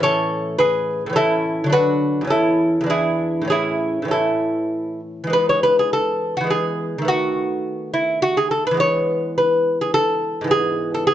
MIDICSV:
0, 0, Header, 1, 2, 480
1, 0, Start_track
1, 0, Key_signature, 3, "major"
1, 0, Tempo, 574713
1, 17, Time_signature, 3, 2, 24, 8
1, 2417, Tempo, 609137
1, 4337, Key_signature, 4, "major"
1, 4337, Tempo, 584226
1, 5777, Tempo, 569260
1, 9200, End_track
2, 0, Start_track
2, 0, Title_t, "Lute"
2, 0, Program_c, 0, 24
2, 0, Note_on_c, 0, 45, 72
2, 0, Note_on_c, 0, 52, 66
2, 1, Note_on_c, 0, 61, 68
2, 24, Note_on_c, 0, 73, 127
2, 31, Note_on_c, 0, 69, 103
2, 466, Note_off_c, 0, 69, 0
2, 476, Note_off_c, 0, 73, 0
2, 488, Note_on_c, 0, 71, 120
2, 499, Note_on_c, 0, 68, 92
2, 878, Note_off_c, 0, 45, 0
2, 885, Note_off_c, 0, 52, 0
2, 888, Note_on_c, 0, 45, 77
2, 915, Note_on_c, 0, 52, 59
2, 929, Note_off_c, 0, 61, 0
2, 937, Note_off_c, 0, 68, 0
2, 942, Note_on_c, 0, 61, 68
2, 945, Note_off_c, 0, 71, 0
2, 967, Note_on_c, 0, 69, 116
2, 973, Note_on_c, 0, 64, 89
2, 1367, Note_off_c, 0, 52, 0
2, 1371, Note_on_c, 0, 50, 76
2, 1389, Note_off_c, 0, 45, 0
2, 1389, Note_on_c, 0, 54, 65
2, 1413, Note_off_c, 0, 61, 0
2, 1414, Note_off_c, 0, 64, 0
2, 1417, Note_on_c, 0, 62, 57
2, 1425, Note_off_c, 0, 69, 0
2, 1440, Note_on_c, 0, 71, 125
2, 1446, Note_on_c, 0, 66, 91
2, 1847, Note_on_c, 0, 40, 69
2, 1872, Note_off_c, 0, 50, 0
2, 1875, Note_on_c, 0, 52, 59
2, 1882, Note_off_c, 0, 54, 0
2, 1893, Note_off_c, 0, 66, 0
2, 1895, Note_off_c, 0, 62, 0
2, 1899, Note_on_c, 0, 61, 63
2, 1904, Note_off_c, 0, 71, 0
2, 1923, Note_on_c, 0, 69, 96
2, 1933, Note_on_c, 0, 64, 69
2, 2335, Note_off_c, 0, 40, 0
2, 2345, Note_on_c, 0, 40, 69
2, 2359, Note_off_c, 0, 52, 0
2, 2369, Note_on_c, 0, 52, 57
2, 2387, Note_off_c, 0, 64, 0
2, 2388, Note_off_c, 0, 61, 0
2, 2392, Note_on_c, 0, 62, 58
2, 2396, Note_off_c, 0, 69, 0
2, 2420, Note_on_c, 0, 68, 102
2, 2424, Note_on_c, 0, 64, 76
2, 2828, Note_on_c, 0, 45, 67
2, 2843, Note_off_c, 0, 40, 0
2, 2844, Note_off_c, 0, 52, 0
2, 2853, Note_on_c, 0, 52, 52
2, 2864, Note_off_c, 0, 64, 0
2, 2866, Note_off_c, 0, 62, 0
2, 2874, Note_off_c, 0, 68, 0
2, 2875, Note_on_c, 0, 61, 57
2, 2894, Note_on_c, 0, 68, 102
2, 2908, Note_on_c, 0, 64, 84
2, 3297, Note_off_c, 0, 45, 0
2, 3306, Note_on_c, 0, 45, 63
2, 3319, Note_off_c, 0, 52, 0
2, 3328, Note_on_c, 0, 52, 54
2, 3344, Note_off_c, 0, 61, 0
2, 3351, Note_off_c, 0, 64, 0
2, 3353, Note_on_c, 0, 61, 51
2, 3356, Note_off_c, 0, 68, 0
2, 3376, Note_on_c, 0, 69, 83
2, 3389, Note_on_c, 0, 64, 61
2, 4070, Note_off_c, 0, 69, 0
2, 4074, Note_off_c, 0, 64, 0
2, 4254, Note_off_c, 0, 52, 0
2, 4263, Note_on_c, 0, 52, 64
2, 4272, Note_off_c, 0, 45, 0
2, 4290, Note_on_c, 0, 56, 54
2, 4297, Note_off_c, 0, 61, 0
2, 4312, Note_on_c, 0, 59, 60
2, 4337, Note_on_c, 0, 71, 113
2, 4458, Note_off_c, 0, 71, 0
2, 4470, Note_on_c, 0, 73, 89
2, 4581, Note_off_c, 0, 73, 0
2, 4584, Note_on_c, 0, 71, 100
2, 4703, Note_off_c, 0, 71, 0
2, 4716, Note_on_c, 0, 68, 87
2, 4827, Note_off_c, 0, 68, 0
2, 4830, Note_on_c, 0, 69, 109
2, 5168, Note_off_c, 0, 69, 0
2, 5190, Note_on_c, 0, 66, 83
2, 5210, Note_off_c, 0, 52, 0
2, 5220, Note_on_c, 0, 52, 69
2, 5238, Note_off_c, 0, 56, 0
2, 5248, Note_on_c, 0, 56, 50
2, 5255, Note_off_c, 0, 59, 0
2, 5272, Note_on_c, 0, 59, 56
2, 5301, Note_on_c, 0, 68, 105
2, 5303, Note_off_c, 0, 66, 0
2, 5692, Note_off_c, 0, 52, 0
2, 5695, Note_on_c, 0, 51, 65
2, 5720, Note_off_c, 0, 56, 0
2, 5723, Note_on_c, 0, 57, 57
2, 5739, Note_off_c, 0, 59, 0
2, 5748, Note_on_c, 0, 59, 57
2, 5760, Note_off_c, 0, 68, 0
2, 5775, Note_on_c, 0, 66, 112
2, 6474, Note_off_c, 0, 66, 0
2, 6496, Note_on_c, 0, 64, 90
2, 6732, Note_off_c, 0, 64, 0
2, 6737, Note_on_c, 0, 66, 106
2, 6861, Note_off_c, 0, 66, 0
2, 6863, Note_on_c, 0, 68, 91
2, 6977, Note_off_c, 0, 68, 0
2, 6980, Note_on_c, 0, 69, 99
2, 7102, Note_off_c, 0, 69, 0
2, 7112, Note_on_c, 0, 71, 101
2, 7147, Note_off_c, 0, 51, 0
2, 7150, Note_on_c, 0, 52, 71
2, 7161, Note_off_c, 0, 57, 0
2, 7174, Note_off_c, 0, 59, 0
2, 7176, Note_on_c, 0, 56, 60
2, 7200, Note_on_c, 0, 59, 55
2, 7221, Note_off_c, 0, 71, 0
2, 7224, Note_on_c, 0, 73, 115
2, 7683, Note_off_c, 0, 73, 0
2, 7711, Note_on_c, 0, 71, 84
2, 8052, Note_off_c, 0, 71, 0
2, 8078, Note_on_c, 0, 68, 90
2, 8182, Note_off_c, 0, 68, 0
2, 8186, Note_on_c, 0, 69, 120
2, 8583, Note_on_c, 0, 44, 69
2, 8588, Note_off_c, 0, 52, 0
2, 8601, Note_off_c, 0, 56, 0
2, 8609, Note_on_c, 0, 52, 62
2, 8613, Note_off_c, 0, 59, 0
2, 8635, Note_on_c, 0, 59, 56
2, 8641, Note_off_c, 0, 69, 0
2, 8665, Note_on_c, 0, 68, 110
2, 9007, Note_off_c, 0, 68, 0
2, 9032, Note_on_c, 0, 69, 89
2, 9134, Note_off_c, 0, 69, 0
2, 9138, Note_on_c, 0, 68, 112
2, 9200, Note_off_c, 0, 44, 0
2, 9200, Note_off_c, 0, 52, 0
2, 9200, Note_off_c, 0, 59, 0
2, 9200, Note_off_c, 0, 68, 0
2, 9200, End_track
0, 0, End_of_file